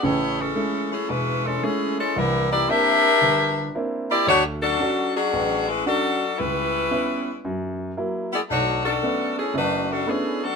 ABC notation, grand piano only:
X:1
M:4/4
L:1/8
Q:"Swing" 1/4=114
K:A
V:1 name="Grand piano"
[A,,,C,]2 [G,A,C] z E,,,2 [G,A,C] z | [=C,,E,]2 [_B,=CDE] z =G,,,2 [B,CDE] z | D,,2 [CDF] z A,,,2 [CDF] z | C,,2 [B,CE] z F,,2 [F,^A,E] z |
B,,,2 [A,B,CD] z [F,,,F,,]2 [A,B,CD] z |]